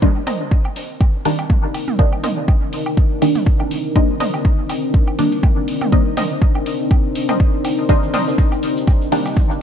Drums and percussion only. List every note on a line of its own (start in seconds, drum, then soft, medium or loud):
0.02 kick loud
0.27 mid tom medium
0.27 open hi-hat medium
0.27 low woodblock soft
0.51 kick loud
0.65 low woodblock soft
0.76 open hi-hat medium
1.01 kick loud
1.01 low woodblock soft
1.25 open hi-hat medium
1.39 open hi-hat soft
1.39 low woodblock soft
1.50 kick loud
1.50 mid tom medium
1.74 open hi-hat medium
1.74 low woodblock soft
1.88 mid tom loud
1.99 kick loud
2.13 low woodblock soft
2.24 mid tom medium
2.24 open hi-hat medium
2.48 kick loud
2.48 low woodblock soft
2.73 open hi-hat medium
2.86 low woodblock soft
2.97 kick loud
3.22 open hi-hat medium
3.22 low woodblock soft
3.35 mid tom medium
3.35 open hi-hat soft
3.46 kick loud
3.60 low woodblock soft
3.71 open hi-hat medium
3.96 kick loud
3.96 low woodblock soft
4.20 mid tom medium
4.20 open hi-hat medium
4.34 low woodblock soft
4.45 kick loud
4.69 open hi-hat medium
4.69 low woodblock soft
4.94 kick loud
5.08 low woodblock soft
5.19 open hi-hat medium
5.32 open hi-hat soft
5.43 kick loud
5.43 mid tom medium
5.43 low woodblock soft
5.68 open hi-hat medium
5.81 mid tom medium
5.81 low woodblock soft
5.92 kick loud
6.17 mid tom medium
6.17 open hi-hat medium
6.17 low woodblock soft
6.42 kick loud
6.55 low woodblock soft
6.66 open hi-hat medium
6.91 kick loud
6.91 low woodblock soft
7.15 open hi-hat medium
7.29 mid tom medium
7.29 open hi-hat soft
7.29 low woodblock soft
7.40 kick loud
7.64 open hi-hat medium
7.64 low woodblock soft
7.89 kick loud
7.89 shaker medium
8.03 shaker soft
8.14 mid tom medium
8.14 open hi-hat medium
8.14 low woodblock soft
8.28 shaker medium
8.38 kick loud
8.38 shaker medium
8.52 low woodblock soft
8.52 shaker soft
8.63 open hi-hat medium
8.77 shaker medium
8.87 kick loud
8.87 low woodblock soft
8.87 shaker medium
9.02 shaker soft
9.12 open hi-hat medium
9.26 open hi-hat soft
9.26 low woodblock soft
9.26 shaker medium
9.36 kick loud
9.36 mid tom medium
9.36 shaker medium
9.51 shaker soft